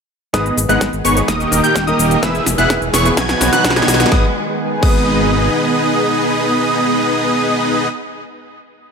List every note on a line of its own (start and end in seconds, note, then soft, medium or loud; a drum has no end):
0.33 0.51 G#1 loud
0.33 0.44 G#2 medium
0.33 2.21 D#3 medium
0.33 1.27 G#3 medium
0.33 0.44 B3 medium
0.33 1.27 B3 medium
0.33 0.58 B3 medium
0.33 0.45 D#4 medium
0.33 0.58 D#4 medium
0.33 1.27 G#4 medium
0.33 0.58 G#4 medium
0.33 0.45 G#4 medium
0.33 0.58 B4 medium
0.33 0.45 B4 medium
0.33 0.58 D#5 medium
0.33 0.58 D#6 medium
0.33 kick loud
0.33 snare soft
0.33 closed hi-hat medium
0.33 riser medium
0.33 shaker soft
0.46 closed hi-hat soft
0.46 shaker soft
0.57 0.66 G#1 medium
0.57 open hi-hat loud
0.57 shaker medium
0.69 0.78 G#1 medium
0.69 0.86 G#2 medium
0.69 0.86 B3 medium
0.69 0.84 B3 medium
0.69 0.86 D#4 medium
0.69 0.84 D#4 medium
0.69 0.84 G#4 medium
0.69 0.87 G#4 medium
0.69 0.84 B4 medium
0.69 0.87 D#5 loud
0.69 0.84 F#5 medium
0.69 0.84 F#6 medium
0.69 closed hi-hat medium
0.69 shaker soft
0.81 0.90 G#1 medium
0.81 kick loud
0.81 snare medium
0.81 closed hi-hat medium
0.81 shaker soft
0.93 1.02 G#1 medium
0.93 closed hi-hat soft
0.93 shaker soft
1.05 1.22 G#1 medium
1.05 1.20 B3 loud
1.05 1.20 D#4 medium
1.05 1.20 G#4 medium
1.05 1.20 B4 medium
1.05 1.20 C#5 loud
1.05 1.20 C#6 loud
1.05 open hi-hat loud
1.05 shaker medium
1.16 1.27 B3 medium
1.16 1.27 D#4 medium
1.16 1.27 G#4 medium
1.16 1.27 B4 medium
1.16 closed hi-hat medium
1.16 shaker soft
1.28 1.46 D#1 medium
1.28 2.22 G3 medium
1.28 2.22 A#3 medium
1.28 1.61 A#3 loud
1.28 1.61 D#4 medium
1.28 1.61 G4 medium
1.28 2.22 G4 medium
1.28 1.61 A#4 medium
1.28 1.61 D#5 loud
1.28 1.61 D#6 loud
1.28 kick loud
1.28 snare medium
1.28 closed hi-hat medium
1.28 shaker soft
1.40 closed hi-hat soft
1.40 shaker soft
1.51 1.61 D#1 medium
1.51 1.84 D#3 medium
1.51 1.84 A#3 medium
1.51 1.85 D#4 medium
1.51 1.85 G4 medium
1.51 1.85 A#4 medium
1.51 open hi-hat loud
1.51 shaker medium
1.64 1.85 A#3 medium
1.64 1.85 D#4 medium
1.64 1.85 G4 medium
1.64 1.85 A#4 medium
1.64 1.85 G5 medium
1.64 1.85 G6 medium
1.64 closed hi-hat medium
1.64 shaker soft
1.76 1.93 D#1 loud
1.76 kick loud
1.76 snare medium
1.76 closed hi-hat medium
1.76 shaker soft
1.87 2.20 D#3 medium
1.87 2.20 A#3 medium
1.87 2.20 D#4 medium
1.87 2.20 G4 medium
1.87 2.20 A#4 medium
1.87 2.20 A#4 loud
1.87 2.20 D#5 medium
1.87 2.20 D#6 medium
1.87 closed hi-hat soft
1.87 shaker soft
1.99 2.17 D#1 loud
1.99 open hi-hat loud
1.99 shaker medium
2.11 closed hi-hat medium
2.11 shaker soft
2.22 2.40 E1 loud
2.22 2.33 E3 medium
2.22 3.16 E3 medium
2.22 3.16 G#3 medium
2.22 2.33 B3 medium
2.22 4.10 B3 medium
2.22 2.47 B3 medium
2.22 2.34 E4 medium
2.22 2.47 E4 medium
2.22 3.16 G#4 medium
2.22 2.47 G#4 medium
2.22 2.34 G#4 medium
2.22 2.34 B4 loud
2.22 2.47 E6 medium
2.22 kick loud
2.22 snare medium
2.22 closed hi-hat medium
2.22 shaker soft
2.35 closed hi-hat soft
2.35 shaker soft
2.46 2.55 E1 medium
2.46 snare medium
2.46 open hi-hat loud
2.46 shaker medium
2.58 2.67 E1 medium
2.58 2.75 E3 loud
2.58 2.75 B3 medium
2.58 2.73 B3 medium
2.58 2.75 E4 medium
2.58 2.73 E4 medium
2.58 2.73 G#4 medium
2.58 2.76 G#4 medium
2.58 2.73 B4 medium
2.58 2.76 E5 loud
2.58 2.73 F#5 medium
2.58 2.73 F#6 medium
2.58 closed hi-hat medium
2.58 shaker soft
2.70 2.79 E1 medium
2.70 kick loud
2.70 snare medium
2.70 closed hi-hat medium
2.70 shaker soft
2.82 2.91 E1 medium
2.82 closed hi-hat soft
2.82 shaker soft
2.94 3.11 E1 medium
2.94 3.09 B3 loud
2.94 3.09 E4 medium
2.94 3.09 G#4 medium
2.94 3.09 B4 medium
2.94 3.09 C#5 loud
2.94 3.09 C#6 loud
2.94 snare medium
2.94 open hi-hat loud
2.94 shaker medium
3.05 3.16 B2 medium
3.05 3.16 B3 medium
3.05 3.16 E4 medium
3.05 3.16 G#4 medium
3.05 3.16 B4 medium
3.05 closed hi-hat medium
3.05 shaker soft
3.17 3.35 B1 medium
3.17 4.10 D#3 medium
3.17 4.11 F#3 medium
3.17 3.50 B3 medium
3.17 3.50 D#4 medium
3.17 4.11 F#4 medium
3.17 3.50 F#4 medium
3.17 3.50 B4 medium
3.17 3.50 G#5 loud
3.17 3.50 G#6 loud
3.17 kick loud
3.17 snare medium
3.17 closed hi-hat medium
3.17 shaker soft
3.29 snare medium
3.29 closed hi-hat soft
3.29 shaker soft
3.40 3.50 B1 medium
3.40 3.73 B2 medium
3.40 3.73 B3 medium
3.40 3.74 D#4 medium
3.40 3.74 F#4 medium
3.40 3.74 B4 loud
3.40 snare loud
3.40 open hi-hat loud
3.40 shaker medium
3.53 3.74 B3 medium
3.53 3.74 D#4 medium
3.53 3.74 F#4 medium
3.53 3.74 B4 medium
3.53 3.74 F#5 medium
3.53 3.73 F#6 medium
3.53 snare medium
3.53 closed hi-hat medium
3.53 shaker soft
3.65 3.82 B1 loud
3.65 kick loud
3.65 snare loud
3.65 closed hi-hat medium
3.65 shaker soft
3.70 snare medium
3.76 4.09 B2 medium
3.76 4.09 B3 medium
3.76 4.09 D#4 medium
3.76 4.09 F#4 medium
3.76 4.09 B4 medium
3.76 4.09 B4 loud
3.76 4.09 G#5 loud
3.76 4.09 G#6 medium
3.76 snare medium
3.76 closed hi-hat soft
3.76 shaker soft
3.82 snare medium
3.88 4.06 B1 loud
3.88 snare loud
3.88 open hi-hat loud
3.88 shaker medium
3.94 snare loud
4.00 snare loud
4.00 closed hi-hat medium
4.00 shaker soft
4.06 snare loud
4.10 4.25 G#1 loud
4.10 7.16 D#3 medium
4.10 7.16 G#3 medium
4.10 4.24 B3 medium
4.10 7.16 B3 medium
4.10 4.25 B3 medium
4.10 4.25 D#4 medium
4.10 7.16 G#4 medium
4.10 4.25 G#4 medium
4.10 4.25 B4 medium
4.10 4.26 B4 medium
4.10 4.25 D#5 loud
4.10 4.25 D#6 loud
4.10 kick loud
4.10 snare medium
4.81 5.50 G#1 loud
4.81 7.85 B3 medium
4.81 7.87 B3 medium
4.81 7.87 D#4 medium
4.81 7.87 G#4 medium
4.81 7.88 G#4 medium
4.81 7.87 B4 medium
4.81 7.89 B4 loud
4.81 7.87 D#5 medium
4.81 7.87 D#6 medium
4.81 kick loud
4.81 crash medium